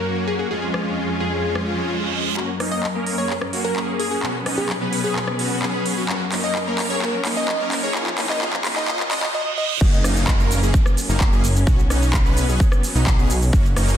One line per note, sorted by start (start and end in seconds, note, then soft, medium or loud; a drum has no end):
0.00 0.49 F#2 medium
0.00 0.47 F#3 medium
0.00 0.48 A#3 medium
0.00 0.48 C#4 medium
0.00 0.49 C#4 medium
0.00 0.48 F#4 medium
0.00 0.49 A#4 medium
0.27 0.35 G#4 medium
0.39 0.47 G#4 medium
0.51 2.35 F2 medium
0.51 2.34 F2 medium
0.51 2.35 F3 medium
0.51 2.34 G#3 medium
0.51 2.35 C#4 medium
0.51 2.34 C#4 medium
0.51 2.34 F4 medium
0.51 2.35 G#4 medium
0.51 0.58 G#4 medium
0.62 0.70 G#4 medium
0.74 cross-stick medium
1.20 1.55 G#4 medium
1.44 reverse cymbal medium
1.55 cross-stick medium
2.37 4.21 F#2 medium
2.37 7.91 F#3 medium
2.37 2.50 A#3 medium
2.37 6.05 C#4 medium
2.37 2.50 C#4 medium
2.37 2.50 F#4 medium
2.37 4.21 A#4 medium
2.37 clap soft
2.37 riser medium
2.60 2.81 A#3 medium
2.60 2.81 C#4 medium
2.60 2.81 D#4 medium
2.60 cross-stick medium
2.60 open hi-hat medium
2.72 2.87 D#5 medium
2.83 clap soft
2.95 3.15 A#3 loud
2.95 3.15 C#4 medium
2.95 3.15 A#4 loud
3.07 open hi-hat medium
3.18 3.31 A#3 medium
3.18 3.31 C#4 medium
3.18 3.31 G#4 medium
3.18 3.33 C#5 medium
3.30 clap medium
3.41 cross-stick medium
3.53 3.74 A#3 medium
3.53 3.73 C#4 medium
3.53 3.73 F#4 medium
3.53 open hi-hat loud
3.64 3.79 A#4 medium
3.76 4.08 A#3 medium
3.76 4.08 C#4 medium
3.76 4.08 G#4 medium
3.76 clap medium
3.99 4.07 G#4 medium
3.99 open hi-hat medium
4.11 4.20 A#3 medium
4.11 4.20 C#4 medium
4.11 4.20 F#4 medium
4.11 4.19 G#4 medium
4.23 6.07 B2 medium
4.23 4.36 B3 medium
4.23 4.36 C#4 medium
4.23 4.36 F#4 medium
4.23 6.07 B4 medium
4.23 clap medium
4.46 4.67 B3 medium
4.46 4.67 C#4 medium
4.46 4.67 D#4 medium
4.46 cross-stick medium
4.46 open hi-hat loud
4.58 4.73 G#4 medium
4.69 clap medium
4.81 5.01 B3 loud
4.81 5.01 C#4 medium
4.81 5.01 B4 loud
4.93 open hi-hat loud
5.04 5.17 B3 medium
5.04 5.17 C#4 medium
5.04 5.17 G#4 loud
5.04 5.39 G#4 medium
5.16 clap medium
5.28 cross-stick medium
5.39 5.60 B3 medium
5.39 5.60 C#4 medium
5.39 5.60 F#4 medium
5.39 open hi-hat loud
5.62 5.94 B3 medium
5.62 5.94 C#4 medium
5.62 5.94 G#4 medium
5.62 clap medium
5.86 open hi-hat medium
5.97 6.06 B3 medium
5.97 6.06 C#4 medium
5.97 6.06 F#4 medium
6.09 7.93 F#2 medium
6.09 6.22 A#3 medium
6.09 9.31 C#4 medium
6.09 6.22 C#4 medium
6.09 6.22 F#4 medium
6.09 7.93 A#4 medium
6.09 clap medium
6.32 6.53 A#3 medium
6.32 6.53 C#4 medium
6.32 6.53 D#4 medium
6.32 clap medium
6.32 open hi-hat loud
6.44 6.59 D#5 medium
6.55 clap medium
6.67 6.88 A#3 medium
6.67 6.88 C#4 medium
6.67 6.88 A#4 loud
6.79 clap medium
6.79 open hi-hat loud
6.90 7.00 A#3 medium
6.90 7.00 C#4 medium
6.90 7.00 G#4 medium
6.90 7.00 C#5 medium
7.02 7.15 A#3 medium
7.02 7.15 C#4 medium
7.02 7.15 F#4 medium
7.02 clap medium
7.25 7.46 A#3 medium
7.25 7.46 C#4 medium
7.25 7.46 D#4 medium
7.25 clap medium
7.25 open hi-hat loud
7.37 7.52 D#5 medium
7.48 clap medium
7.60 7.81 A#3 loud
7.60 7.81 C#4 medium
7.60 7.81 A#4 loud
7.72 clap medium
7.72 open hi-hat loud
7.83 7.93 A#3 medium
7.83 7.93 C#4 medium
7.83 7.93 G#4 medium
7.83 7.93 C#5 medium
7.95 9.33 F2 medium
7.95 9.33 F3 medium
7.95 8.08 A#3 medium
7.95 8.08 C#4 medium
7.95 8.08 F4 medium
7.95 9.33 G#4 medium
7.95 clap medium
8.07 clap medium
8.18 8.39 A#3 medium
8.18 8.39 C#4 medium
8.18 8.39 D#4 medium
8.18 clap medium
8.18 open hi-hat loud
8.30 8.40 D#5 medium
8.30 clap medium
8.42 8.55 A#3 medium
8.42 8.55 C#4 medium
8.42 8.55 F4 medium
8.42 clap medium
8.53 clap medium
8.65 8.86 A#3 medium
8.65 8.86 C#4 medium
8.65 8.86 D#4 medium
8.65 clap loud
8.65 open hi-hat loud
8.76 8.86 D#5 medium
8.76 clap medium
8.88 9.01 A#3 medium
8.88 9.01 C#4 medium
8.88 9.01 F4 medium
8.88 9.03 D#5 loud
8.88 clap loud
8.88 reverse cymbal medium
9.00 clap medium
9.11 9.24 A#3 medium
9.11 9.24 C#4 medium
9.11 9.24 F4 medium
9.11 9.26 D#5 loud
9.11 clap loud
9.11 open hi-hat loud
9.23 clap medium
9.35 9.49 D#5 medium
9.58 9.73 D#5 loud
9.81 10.02 F#1 loud
9.81 13.97 F#3 medium
9.81 11.65 A#3 medium
9.81 9.94 A#3 medium
9.81 13.49 C#4 loud
9.81 9.94 C#4 medium
9.81 9.94 F#4 medium
9.81 kick loud
9.81 crash loud
9.81 downlifter medium
9.81 shaker soft
9.94 shaker soft
10.04 10.37 F#1 medium
10.04 10.25 A#3 medium
10.04 10.25 C#4 medium
10.04 10.25 D#4 medium
10.04 cross-stick medium
10.04 open hi-hat loud
10.04 shaker medium
10.17 shaker soft
10.27 kick loud
10.27 clap loud
10.27 shaker soft
10.39 10.60 F#1 loud
10.39 10.60 A#3 medium
10.39 10.60 C#4 medium
10.39 10.60 A#4 loud
10.39 shaker soft
10.51 open hi-hat loud
10.51 shaker medium
10.62 10.73 F#1 loud
10.62 10.76 A#3 medium
10.62 10.76 C#4 medium
10.62 10.76 G#4 loud
10.62 shaker soft
10.74 kick loud
10.74 shaker soft
10.86 cross-stick medium
10.86 shaker soft
10.97 open hi-hat loud
10.97 shaker medium
11.09 11.30 F#1 loud
11.09 11.22 A#3 medium
11.09 11.22 C#4 medium
11.09 11.22 D#4 medium
11.09 shaker soft
11.20 kick loud
11.20 clap loud
11.20 shaker soft
11.32 11.65 F#1 loud
11.32 11.45 A#3 medium
11.32 11.45 C#4 medium
11.32 11.45 G#4 medium
11.32 shaker soft
11.44 open hi-hat loud
11.44 shaker medium
11.56 shaker soft
11.67 11.88 B1 loud
11.67 11.80 B3 medium
11.67 13.51 B3 medium
11.67 11.80 C#4 medium
11.67 11.80 F#4 medium
11.67 kick loud
11.67 shaker soft
11.79 shaker soft
11.90 12.23 B1 loud
11.90 12.11 B3 medium
11.90 12.11 C#4 medium
11.90 12.11 D#4 medium
11.90 cross-stick medium
11.90 open hi-hat loud
11.90 shaker medium
12.03 shaker soft
12.13 kick loud
12.13 clap loud
12.13 shaker soft
12.25 12.46 B1 loud
12.25 12.46 B3 loud
12.25 12.46 C#4 medium
12.25 12.46 B4 loud
12.25 shaker soft
12.37 open hi-hat loud
12.37 shaker medium
12.48 12.59 B1 loud
12.48 12.62 B3 medium
12.48 12.62 C#4 medium
12.48 12.62 G#4 medium
12.48 shaker soft
12.60 kick loud
12.60 shaker soft
12.72 cross-stick medium
12.72 shaker soft
12.83 open hi-hat loud
12.83 shaker medium
12.95 13.16 B1 loud
12.95 13.08 B3 medium
12.95 13.08 C#4 medium
12.95 13.08 D#4 loud
12.95 shaker soft
13.07 kick loud
13.07 clap loud
13.07 shaker soft
13.18 13.51 B1 loud
13.18 13.31 B3 medium
13.18 13.31 C#4 medium
13.18 13.31 G#4 loud
13.18 shaker soft
13.30 open hi-hat loud
13.30 shaker medium
13.42 shaker soft
13.53 13.74 F#1 loud
13.53 13.97 A#3 medium
13.53 13.66 A#3 medium
13.53 13.66 C#4 medium
13.53 13.97 C#4 medium
13.53 13.66 F#4 medium
13.53 kick loud
13.53 shaker soft
13.66 shaker soft
13.76 13.97 F#1 medium
13.76 13.97 A#3 medium
13.76 13.97 C#4 medium
13.76 13.97 D#4 medium
13.76 cross-stick medium
13.76 open hi-hat loud
13.76 shaker medium
13.89 shaker soft